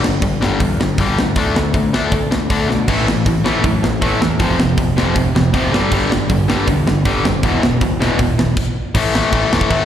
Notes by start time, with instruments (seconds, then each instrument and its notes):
0.03 picked electric bass G1, distorted electric guitar G2 D3, snare
0.22 picked electric bass G1, distorted electric guitar G2 D3, kick, open hi-hat
0.40 picked electric bass G1, distorted electric guitar G2 D3 G3, snare
0.60 picked electric bass E2, distorted electric guitar G2 D3, kick, open hi-hat
0.79 picked electric bass G1, distorted electric guitar G2 D3, snare
0.98 picked electric bass G1, distorted electric guitar G2 D3 G3, kick, open hi-hat
1.17 picked electric bass D2, distorted electric guitar G2 D3, snare
1.36 picked electric bass D2, distorted electric guitar D3 A3 D4, kick, open hi-hat
1.54 picked electric bass D2, distorted electric guitar D3 A3, snare
1.74 picked electric bass D2, distorted electric guitar D3 A3, kick, open hi-hat
1.92 picked electric bass D2, distorted electric guitar D3 A3 D4, snare
2.12 picked electric bass D2, distorted electric guitar D3 A3, kick, open hi-hat
2.31 picked electric bass D2, distorted electric guitar D3 A3, snare
2.50 picked electric bass D2, distorted electric guitar D3 A3 D4, kick, open hi-hat
2.68 picked electric bass B2, distorted electric guitar D3 A3, snare
2.88 picked electric bass A1, distorted electric guitar A2 E3 A3, kick, crash
3.07 picked electric bass A1, distorted electric guitar A2 E3, snare
3.26 picked electric bass A1, distorted electric guitar A2 E3, kick, open hi-hat
3.44 picked electric bass A1, distorted electric guitar A2 E3 A3, snare
3.64 picked electric bass F#2, distorted electric guitar A2 E3, kick, open hi-hat
3.82 picked electric bass A1, distorted electric guitar A2 E3, snare
4.01 picked electric bass A1, distorted electric guitar A2 E3 A3, kick, open hi-hat
4.21 picked electric bass E2, distorted electric guitar A2 E3, snare
4.39 picked electric bass F1, distorted electric guitar F2 C3 F3, kick, open hi-hat
4.58 picked electric bass F1, distorted electric guitar F2 C3, snare
4.77 picked electric bass F1, distorted electric guitar F2 C3, kick, open hi-hat
4.96 picked electric bass F1, distorted electric guitar F2 C3 F3, snare
5.15 picked electric bass F1, distorted electric guitar F2 C3, kick, open hi-hat
5.35 picked electric bass F1, distorted electric guitar F2 C3, snare
5.53 picked electric bass F1, distorted electric guitar F2 C3 F3, kick, open hi-hat
5.72 picked electric bass G1, distorted electric guitar G2 D3 G3, snare
5.92 picked electric bass G1, distorted electric guitar G2 D3 G3, kick, crash
6.11 picked electric bass G1, distorted electric guitar G2 D3, snare
6.30 picked electric bass G1, distorted electric guitar G2 D3, kick, open hi-hat
6.48 picked electric bass G1, distorted electric guitar G2 D3 G3, snare
6.67 picked electric bass E2, distorted electric guitar G2 D3, kick, open hi-hat
6.87 picked electric bass G1, distorted electric guitar G2 D3, snare
7.05 picked electric bass G1, distorted electric guitar G2 D3 G3, kick, open hi-hat
7.24 picked electric bass F#1, distorted electric guitar G2 D3, snare
7.43 picked electric bass E1, distorted electric guitar E2 B2 E3, kick, open hi-hat
7.63 picked electric bass E1, distorted electric guitar E2 B2, snare
7.81 picked electric bass E1, distorted electric guitar E2 B2, kick, open hi-hat
8.00 picked electric bass E1, distorted electric guitar E2 B2 E3, snare
8.19 picked electric bass E1, distorted electric guitar E2 B2, kick, open hi-hat
8.37 picked electric bass E1, distorted electric guitar E2 B2, snare
8.57 kick, crash
8.95 picked electric bass A1, distorted electric guitar A2 E3 A3, kick, crash
9.14 distorted electric guitar A2 E3 A3, snare
9.32 picked electric bass A1, distorted electric guitar A2 E3 A3, kick, crash
9.52 picked electric bass E1, distorted electric guitar A2 E3 A3, snare
9.61 kick
9.71 picked electric bass A1, distorted electric guitar A2 E3 A3, kick, crash